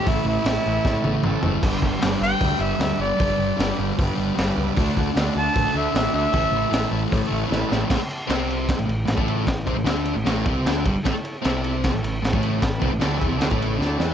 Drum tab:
CC |----------------|x---------------|----------------|----------------|
RD |----------------|----------------|----------------|----------------|
HH |o---o-----------|o---o---o---o---|o---o---o---o---|o---o---o---o---|
SD |----o---o-------|----o-------o---|----o-------o---|----o-------o---|
T1 |----------o-----|----------------|----------------|----------------|
T2 |------------o---|----------------|----------------|----------------|
FT |--------------o-|----------------|----------------|----------------|
BD |o-------o-------|o-o-----o-------|o-------o-------|o-o-----o-------|

CC |----------------|x---------------|----------------|----------------|
RD |----------------|--x-x-x-x-x-x-x-|x-x-x-x-x-x-x-x-|x-x-x-x-x-x-x-x-|
HH |o---o---o-------|----------------|----------------|----------------|
SD |----o-------o-o-|o---o---o---o---|o---o---o---o---|o---o---o---o---|
T1 |----------------|----------------|----------------|----------------|
T2 |----------------|----------------|----------------|----------------|
FT |----------------|----------------|----------------|----------------|
BD |o-------o-------|o-------o----o--|o-o-------o---o-|o-------o----o--|

CC |----------------|
RD |x-x-x-x-x-x-----|
HH |----------------|
SD |o---o---o---o-o-|
T1 |----------------|
T2 |----------------|
FT |----------------|
BD |o-o---o--o------|